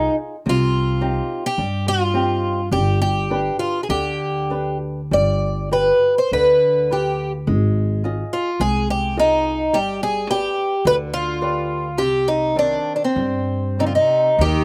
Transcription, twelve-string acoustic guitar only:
Already playing: D#4
0.49 F4
1.46 G4
1.88 F4
2.72 G4
3.02 G4
3.59 F4
3.83 G#4
3.90 G4
5.13 D5
5.73 B4
6.18 C5
6.33 B4
6.93 G4
8.33 F4
8.61 G#4
8.90 G4
9.19 D#4
9.74 G4
10.03 G#4
10.31 G4
10.87 B4
11.14 F4
11.98 G4
12.28 D#4
12.59 D4
12.96 D4
13.04 C4
13.80 D#4
13.86 F4
13.95 D#4
14.41 G4

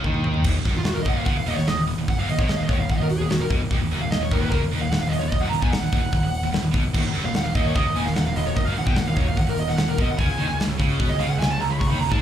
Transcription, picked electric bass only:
0.04 D#2
0.45 D#1
0.54 D#1
0.65 F#1
0.74 D#1
0.95 D#1
1.06 D#1
1.26 C#2
1.35 D#1
1.46 D#1
1.57 D#1
1.67 D#1
1.77 D#1
1.87 D#1
1.97 D#1
2.08 D#1
2.17 F#1
2.27 D#1
2.38 B1
2.47 D#1
2.58 D#1
2.69 D#1
2.79 D#1
2.90 D#1
2.98 D#1
3.19 D#1
3.29 D#1
3.39 D#1
3.50 B1
3.60 D#1
3.70 D#1
3.80 D#1
3.91 F#1
4.00 D#1
4.21 D#1
4.31 D#1
4.52 C#2
4.61 D#1
4.70 D#1
4.80 D#1
4.90 D#1
5.01 D#1
5.10 D#1
5.21 D#1
5.32 D#1
5.40 F#1
5.50 D#1
5.62 B1
5.70 D#1
5.81 D#1
5.92 D#1
6.02 D#1
6.13 D#1
6.23 D#1
6.43 D#1
6.53 D#1
6.63 D#1
6.74 B1
6.83 D#1
6.94 D#1
7.04 D#1
7.14 F#1
7.24 D#1
7.44 D#1
7.55 D#1
7.75 C#2
7.85 D#1
7.95 D#1
8.05 D#1
8.15 D#1
8.25 D#1
8.35 D#1
8.46 D#1
8.56 D#1
8.67 F#1
8.77 D#1
8.87 B1
8.97 D#1
9.08 D#1
9.16 D#1
9.27 D#1
9.38 D#1
9.48 D#1
9.68 D#1
9.78 D#1
9.87 D#1
9.98 B1
10.08 D#1
10.18 C#2
10.28 C#2
10.37 D#2
10.47 C#2
10.67 C#2
10.79 C#2
11.00 B2
11.08 C#2
11.19 C#2
11.29 C#2
11.39 C#2
11.50 C#2
11.61 C#2
11.70 C#2
11.81 C#2
11.89 D#2
12.01 C#2
12.12 G#2

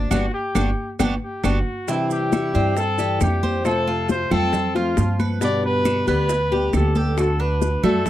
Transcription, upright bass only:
0.11 G1
0.55 G1
1.00 G1
1.44 G1
2.55 G2
3.21 F2
4.32 F2
4.98 G2
6.08 D2
6.74 D2
7.84 F#2

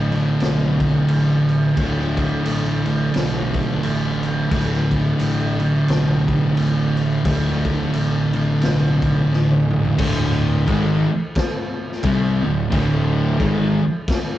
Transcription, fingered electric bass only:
Already playing: A1
0.41 B1
1.09 A1
1.77 D1
2.47 A1
3.16 B1
3.85 A1
4.52 D1
5.19 A1
5.88 B1
6.57 A1
7.25 D1
7.94 A1
8.63 B1
9.32 A1
10.00 D1
10.68 G#1
12.04 C2
12.44 D1
12.72 D1
13.40 G#1

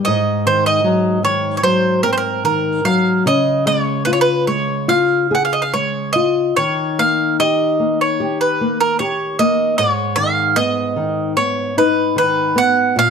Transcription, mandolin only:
0.05 D#5
0.47 C5
0.66 D#5
1.25 C#5
1.57 C#5
1.63 C5
2.03 A#4
2.13 C5
2.18 A#4
2.45 A#4
2.85 F5
3.27 D#5
3.67 C#5
4.05 B4
4.13 C#5
4.21 B4
4.47 C#5
4.89 F5
5.35 F#5
5.45 F5
5.53 D#5
5.62 F5
5.74 C#5
6.13 D#5
6.57 C#5
6.99 F5
7.40 D#5
8.01 C#5
8.41 B4
8.80 A#4
8.99 C#5
9.39 D#5
9.78 C#5
10.16 F5
10.56 D#5
11.37 C#5
11.78 B4
12.18 B4
12.58 F#5
12.99 F5

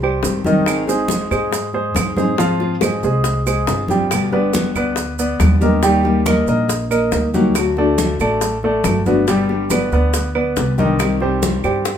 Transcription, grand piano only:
0.03 G3 G4 C5
0.46 D#3 D#4 D#5
0.88 G#3 G#4 C5
1.31 G#3 G#4 C5
1.74 G#3 G#4 C5
2.17 G#3 G#4 C5
2.38 F3 F4 F5
2.82 G#3 G#4 C5
3.04 G#3 G#4 C5
3.46 G#3 G#4 C5
3.90 G3 G4 G5
4.33 B3 B4 D5
4.76 B3 B4 D5
5.19 B3 B4 D5
5.62 A#3 A#4 D#5
5.83 G3 G4 G5
6.27 A#3 A#4 D#5
6.48 A#3 A#4 D#5
6.91 A#3 A#4 D#5
7.34 F#3 F#4 F#5
7.78 A3 A4 D5
8.21 A3 A4 D5
8.64 A3 A4 D5
9.06 B3 B4 D5
9.28 G3 G4 G5
9.71 B3 B4 D5
9.93 B3 B4 D5
10.35 B3 B4 D5
10.78 D#3 D#4 D#5
11.21 G3 G4 C5
11.64 G3 G4 C5

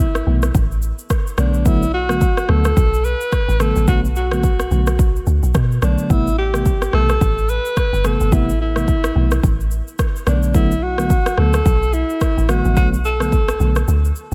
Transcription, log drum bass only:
Already playing: A1
0.27 B1
0.55 A1
1.38 B1
2.49 D2
2.77 B1
3.48 A1
3.76 A1
3.88 B1
4.71 B1
5.27 D2
5.43 B1
5.55 B2
5.82 B1
6.10 A1
6.93 B1
7.21 A1
7.93 G1
8.21 G1
8.32 A1
9.16 B1
9.43 A1
10.27 B1
11.38 D2
11.66 B1
12.37 A1
12.65 A1
12.77 B1
13.60 B1
13.88 D2

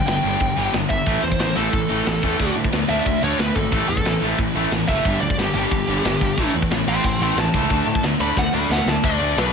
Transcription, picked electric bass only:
0.07 G1
0.24 G1
0.41 G1
0.57 G1
0.74 G1
0.90 G1
1.07 A1
1.23 E2
1.40 A1
1.57 A1
1.73 A1
1.90 A1
2.07 A1
2.23 E2
2.40 D2
2.56 A2
2.73 D2
2.89 D2
3.06 D2
3.22 D2
3.39 D2
3.56 G#1
3.72 A1
3.89 E2
4.05 A1
4.22 A1
4.39 A1
4.55 A1
4.71 A1
4.89 F#1
5.05 G1
5.21 D2
5.38 G1
5.54 G1
5.72 G1
5.88 G1
6.05 G1
6.22 G1
6.38 A1
6.54 E2
6.71 A1
6.87 A1
7.04 A1
7.20 A1
7.36 A1
7.54 C#2
7.70 D2
7.87 A2
8.03 D2
8.20 D2
8.37 D2
8.53 D2
8.70 D2
8.86 D2
9.04 D2
9.20 D2
9.37 B1

